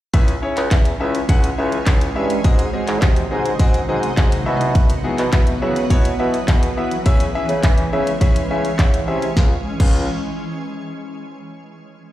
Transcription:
0.13 bassoon C#2, ambient pad E3 G#3 C#4, grand piano C#4 E4 G#4 E5, kick, closed hi-hat
0.28 closed hi-hat
0.42 grand piano C#4 E4 G#4 C#5
0.57 bassoon C#2, clap, closed hi-hat
0.71 bassoon E2, grand piano C#4 E4 G#4 E5, kick, clap, closed hi-hat
0.85 closed hi-hat
1.00 bassoon C#2, grand piano C#4 E4 G#4 E5
1.15 closed hi-hat
1.29 bassoon C#2, grand piano C#4 E4 G#4 F#5, kick, closed hi-hat
1.44 closed hi-hat
1.58 bassoon C#2, grand piano C#4 E4 G#4 E5
1.72 closed hi-hat
1.86 bassoon C#2, grand piano C#4 E4 G#4 E5, kick, clap, closed hi-hat
2.01 closed hi-hat
2.16 bassoon G2, grand piano C#4 E4 G#4 E5
2.30 closed hi-hat
2.44 bassoon G#2, ambient pad C3 D#3 F#3 D#4, grand piano C4 F#4 G#4 D#5, kick, closed hi-hat
2.59 closed hi-hat
2.73 grand piano C4 F#4 G#4 D#5
2.87 bassoon G#2, clap, closed hi-hat
3.02 bassoon C3, grand piano C4 F#4 G#4 D#5, kick, clap, closed hi-hat
3.16 closed hi-hat
3.31 bassoon G#2, grand piano C4 F#4 G#4 D#5
3.46 closed hi-hat
3.59 bassoon G#2, grand piano C4 F#4 G#4 D#5, kick, closed hi-hat
3.74 closed hi-hat
3.88 bassoon G#2, grand piano C4 F#4 G#4 D#5
4.03 closed hi-hat
4.17 bassoon G#2, grand piano C4 F#4 G#4 D#5, kick, clap, closed hi-hat
4.32 closed hi-hat
4.46 bassoon B2, ambient pad E3 B3, grand piano B3 E4 F#4 E5
4.61 closed hi-hat
4.75 kick, closed hi-hat
4.90 closed hi-hat
5.04 grand piano B3 E4 F#4 G#4
5.18 bassoon B2, clap, closed hi-hat
5.33 bassoon B2, grand piano B3 E4 F#4 E5, kick, clap, closed hi-hat
5.47 closed hi-hat
5.62 bassoon C#3, grand piano B3 E4 F#4 E5
5.76 closed hi-hat
5.90 bassoon B2, grand piano B3 E4 F#4 C#5, kick, closed hi-hat
6.05 closed hi-hat
6.19 bassoon B2, grand piano B3 E4 F#4 E5
6.34 closed hi-hat
6.48 bassoon B2, grand piano B3 E4 F#4 G#4, kick, clap, closed hi-hat
6.63 closed hi-hat
6.77 grand piano B3 E4 F#4 E5
6.91 closed hi-hat
7.06 bassoon C#3, ambient pad G#3 C#4, grand piano C#4 E4 G#4 E5, kick, closed hi-hat
7.20 closed hi-hat
7.35 grand piano C#4 E4 G#4 E5
7.49 bassoon C#3, closed hi-hat
7.63 bassoon E3, grand piano C#4 E4 G#4 E5, kick, clap, closed hi-hat
7.78 closed hi-hat
7.93 bassoon C#3, grand piano C#4 E4 G#4 E5
8.07 closed hi-hat
8.21 bassoon C#3, grand piano C#4 E4 G#4 E5, kick, closed hi-hat
8.36 closed hi-hat
8.50 bassoon C#3, grand piano C#4 E4 G#4 E5 G#5
8.65 closed hi-hat
8.79 bassoon C#3, grand piano C#4 E4 G#4 E5 F#5, kick, clap, closed hi-hat
8.94 closed hi-hat
9.08 bassoon C3, grand piano C#4 E4 G#4 E5
9.22 closed hi-hat
9.37 bassoon C#2, grand piano C#4 F4 G#4 F5, kick, snare
9.80 bassoon C#2, grand piano C#4 F4 G#4 F5, kick, crash

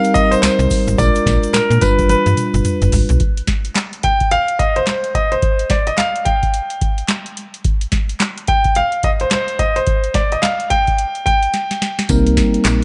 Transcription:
Already playing: tine electric piano G3 C4 D#4 A#4, grand piano F5
0.04 closed hi-hat, shaker
0.14 grand piano D#5, kick, closed hi-hat, shaker
0.31 grand piano C5, closed hi-hat, shaker
0.42 fm bass C2, grand piano C5, snare, clap, closed hi-hat, tambourine, shaker
0.59 fm bass C2, closed hi-hat, shaker
0.70 kick, open hi-hat, tambourine, shaker
0.87 fm bass G#1, closed hi-hat, shaker
0.98 fm bass A#1, tine electric piano G#3 D4 F4 A#4, grand piano D5, kick, closed hi-hat, tambourine, shaker
1.15 closed hi-hat, shaker
1.26 fm bass A#1, kick, snare, closed hi-hat, tambourine
1.43 closed hi-hat, shaker
1.53 fm bass A#2, grand piano A#4, snare, clap, closed hi-hat, tambourine, shaker
1.70 fm bass A#2, closed hi-hat, shaker
1.81 fm bass G1, tine electric piano G3 D4 F4 B4, grand piano B4, kick, closed hi-hat, tambourine
1.99 kick, closed hi-hat, shaker
2.09 grand piano B4, closed hi-hat, high tom, shaker
2.26 fm bass G2, closed hi-hat, high tom, shaker
2.37 closed hi-hat, mid tom, shaker
2.54 fm bass G1, closed hi-hat, mid tom, shaker
2.65 closed hi-hat, mid tom, shaker
2.82 fm bass G1, closed hi-hat, mid tom, shaker
2.92 fm bass G#1, floor tom, open hi-hat, shaker
3.09 fm bass B1, closed hi-hat, floor tom, shaker
3.20 kick, closed hi-hat
3.37 closed hi-hat
3.47 kick, snare, closed hi-hat
3.65 closed hi-hat
3.75 snare, clap, closed hi-hat
3.93 closed hi-hat
4.03 grand piano G5, kick, closed hi-hat
4.20 kick, closed hi-hat
4.31 grand piano F5, closed hi-hat
4.48 closed hi-hat
4.59 grand piano D#5, kick, closed hi-hat
4.76 grand piano C5, closed hi-hat
4.87 grand piano C5, snare, clap, closed hi-hat
5.04 closed hi-hat
5.15 grand piano D#5, kick, closed hi-hat
5.32 grand piano C5, closed hi-hat
5.42 kick, closed hi-hat
5.59 closed hi-hat
5.70 grand piano D5, kick, snare, closed hi-hat
5.87 grand piano D#5, closed hi-hat
5.98 grand piano F5, snare, clap, closed hi-hat
6.16 closed hi-hat
6.25 grand piano G5, kick, closed hi-hat
6.43 kick, closed hi-hat
6.54 closed hi-hat
6.70 closed hi-hat
6.81 kick, closed hi-hat
6.98 closed hi-hat
7.08 snare, clap, closed hi-hat
7.26 closed hi-hat
7.37 closed hi-hat
7.54 closed hi-hat
7.64 kick, closed hi-hat
7.81 closed hi-hat
7.92 kick, snare, closed hi-hat
8.09 closed hi-hat
8.20 snare, clap, closed hi-hat
8.38 closed hi-hat
8.48 grand piano G5, kick, closed hi-hat
8.64 kick, closed hi-hat
8.75 grand piano F5, closed hi-hat
8.92 closed hi-hat
9.03 grand piano D#5, kick, closed hi-hat
9.20 grand piano C5, closed hi-hat
9.31 grand piano C5, snare, clap, closed hi-hat
9.48 closed hi-hat
9.59 grand piano D#5, kick, closed hi-hat
9.76 grand piano C5, closed hi-hat
9.87 kick, closed hi-hat
10.04 closed hi-hat
10.14 grand piano D5, kick, snare, closed hi-hat
10.32 grand piano D#5, closed hi-hat
10.42 grand piano F5, snare, clap, closed hi-hat
10.60 closed hi-hat
10.70 grand piano G5, kick, closed hi-hat
10.87 kick, closed hi-hat
10.98 closed hi-hat
11.15 closed hi-hat
11.26 grand piano G5, kick, closed hi-hat
11.43 closed hi-hat
11.54 snare, closed hi-hat
11.71 snare, closed hi-hat
11.82 snare, closed hi-hat
11.99 snare, closed hi-hat
12.09 fm bass C2, tine electric piano G3 A#3 C4 D#4 A#4, kick, closed hi-hat, tambourine
12.27 closed hi-hat
12.37 kick, snare, closed hi-hat, tambourine
12.54 closed hi-hat
12.65 fm bass A#1, snare, clap, closed hi-hat, tambourine

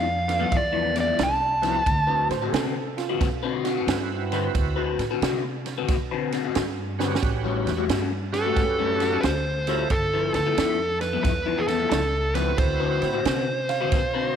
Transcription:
Already playing: upright bass F2, lead electric guitar F5
0.07 muted clean electric guitar stroke
0.28 tonewheel organ B3 D4 F4 A4, muted clean electric guitar stroke, snare, ride
0.39 clean electric guitar G2 F3 B3 E4
0.52 upright bass E2, kick, ride
0.57 lead electric guitar D5
0.72 clean electric guitar G2 F3 B3 E4
0.95 clean electric guitar G2 F3 B3 E4, snare, ride
1.00 lead electric guitar D5
1.06 clean electric guitar G2 F3 B3 E4
1.19 upright bass C2, snare, ride
1.23 lead electric guitar A5
1.62 clean electric guitar G2 F3 B3 E4, tonewheel organ C4 E4 F#4 B4, snare, ride
1.86 upright bass D2, kick, ride
2.07 clean electric guitar D3 C4 F#4 B4
2.29 upright bass A2, upright piano C5, snare, ride
2.42 clean electric guitar D3 C4 F#4 B4
2.48 upright piano G#4
2.53 upright bass C3, clean electric guitar D3 C4 F#4 B4, upright piano A4, snare, ride
2.76 muted clean electric guitar stroke
2.97 upright piano F4, muted clean electric guitar stroke, snare, ride
3.09 clean electric guitar D3 C4 F#4 B4
3.21 upright bass B2, kick, snare, ride
3.43 clean electric guitar D3 C4 F#4 B4
3.64 clean electric guitar D3 C4 F#4 B4, upright piano F#4, snare, ride
3.77 clean electric guitar D3 C4 F#4 B4
3.87 upright bass G2, tonewheel organ C4 E4 F#4 B4, snare, ride
4.32 clean electric guitar D3 C4 F#4 B4, snare, ride
4.55 upright bass D2, kick, ride
4.76 clean electric guitar D3 C4 F#4 B4
4.98 upright bass A2, snare, ride
5.11 clean electric guitar D3 C4 F#4 B4
5.21 upright bass C3, clean electric guitar D3 C4 F#4 B4, snare, ride
5.45 muted clean electric guitar stroke
5.66 muted clean electric guitar stroke, snare, ride
5.78 clean electric guitar D3 C4 F#4 B4
5.88 upright bass B2, kick, snare, ride
6.11 clean electric guitar D3 C4 F#4 B4
6.32 clean electric guitar D3 C4 F#4 B4, snare, ride
6.44 clean electric guitar D3 C4 F#4 B4
6.55 upright bass G2, snare, ride
6.99 clean electric guitar D3 C4 F#4 B4, tonewheel organ C#4 F#4 G4 B4, snare
7.15 snare
7.23 upright bass A1, kick, ride
7.44 clean electric guitar A2 G3 C#4 F#4
7.66 upright bass E2, snare, ride
7.77 clean electric guitar A2 G3 C#4 F#4
7.88 upright bass G2, clean electric guitar A2 G3 C#4 F#4, snare, ride
8.12 muted clean electric guitar stroke
8.32 tonewheel organ C#4 F#4 G4 B4, lead electric guitar A4, muted clean electric guitar stroke, snare, ride
8.45 clean electric guitar A2 G3 C#4 F#4
8.56 upright bass F#2, kick, snare, ride
8.79 clean electric guitar A2 G3 C#4 F#4
9.00 clean electric guitar A2 G3 C#4 F#4, snare, ride
9.12 clean electric guitar A2 G3 C#4 F#4
9.21 upright bass D2, lead electric guitar B4, snare, ride
9.25 lead electric guitar C5
9.67 clean electric guitar A2 G3 C#4 F#4, tonewheel organ A3 E4 F4 A4, snare, ride
9.90 upright bass G1, lead electric guitar A4, kick, ride
10.13 clean electric guitar G2 F3 B3 E4
10.33 upright bass D2, lead electric guitar A4, snare, ride
10.46 clean electric guitar G2 F3 B3 E4
10.57 upright bass F2, clean electric guitar G2 F3 B3 E4, snare, ride
10.80 muted clean electric guitar stroke
11.01 lead electric guitar B4, muted clean electric guitar stroke, snare, ride
11.13 clean electric guitar G2 F3 B3 E4
11.24 upright bass E2, lead electric guitar B4, kick, snare, ride
11.46 clean electric guitar G2 F3 B3 E4
11.58 lead electric guitar G#4
11.68 clean electric guitar G2 F3 B3 E4, lead electric guitar A4, snare, ride
11.79 clean electric guitar G2 F3 B3 E4
11.90 upright bass C#2, lead electric guitar A4, snare, ride
12.34 clean electric guitar G2 F3 B3 E4, tonewheel organ C4 E4 F#4 B5, lead electric guitar B4, snare, ride
12.58 upright bass D2, lead electric guitar C5, kick, ride
12.80 clean electric guitar D3 C4 F#4 B4
13.02 upright bass A2, snare, ride
13.13 clean electric guitar D3 C4 F#4 B4
13.25 upright bass C3, clean electric guitar D3 C4 F#4 B4, snare, ride
13.47 muted clean electric guitar stroke
13.69 upright piano F5, muted clean electric guitar stroke, snare, ride
13.81 clean electric guitar D3 C4 F#4 B4
13.92 upright bass B2, kick, snare, ride
14.14 clean electric guitar D3 C4 F#4 B4

